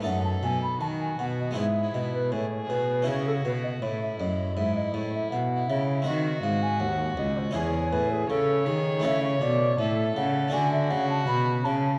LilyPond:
<<
  \new Staff \with { instrumentName = "Flute" } { \time 4/4 \key cis \minor \tempo 4 = 80 fis''16 a''16 gis''16 b''16 a''16 gis''16 fis''16 dis''16 e''8 dis''16 b'16 cis''8 b'8 | cis''16 a'16 b'16 dis''16 cis''16 e''16 dis''8 e''16 dis''16 cis''16 e''16 fis''8 e''8 | ees''8 f''16 gis''16 ges''8 ees''16 c''16 cis''8 b'16 gis'16 a'8 gis'8 | \key a \major e''16 cis''16 d''8 e''8 fis''8 gis''16 e''16 fis''16 a''16 b''8 a''8 | }
  \new Staff \with { instrumentName = "Violin" } { \time 4/4 \key cis \minor a'4 fis'4 e'4 gis'4 | fis'4 e'4 e'2 | ges'2 gis'4 cis''4~ | \key a \major cis''4 a'4 fis'2 | }
  \new Staff \with { instrumentName = "Harpsichord" } { \time 4/4 \key cis \minor <a dis' a'>2 <gis b e' gis'>2 | <cis' e' gis'>1 | <c' ges'>2 <cis' e' gis'>2 | \key a \major <a e' a'>2 <a d' fis'>2 | }
  \new Staff \with { instrumentName = "Harpsichord" } { \clef bass \time 4/4 \key cis \minor fis,8 b,8 dis8 b,8 gis,8 b,8 a,8 b,8 | cis8 b,8 a,8 fis,8 gis,8 a,8 b,8 cis8 | ees8 gis,8 ees,8 cis,8 e,8 a,8 cis8 dis8 | \key a \major cis8 b,8 a,8 cis8 d8 cis8 b,8 cis8 | }
  \new Staff \with { instrumentName = "Cello" } { \clef bass \time 4/4 \key cis \minor fis,8 b,8 dis8 b,8 gis,8 b,8 a,8 b,8 | cis8 b,8 a,8 fis,8 gis,8 a,8 b,8 cis8 | ees8 gis,8 ees,8 cis,8 e,8 a,8 cis8 dis8 | \key a \major cis8 b,8 a,8 cis8 d8 cis8 b,8 cis8 | }
>>